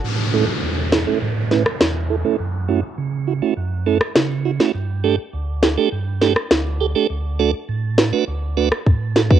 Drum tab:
SD |------o---oro---|-----------ro--o|------o---oro---|------o----r--o-|
BD |----------------|----------------|----------------|------------o--o|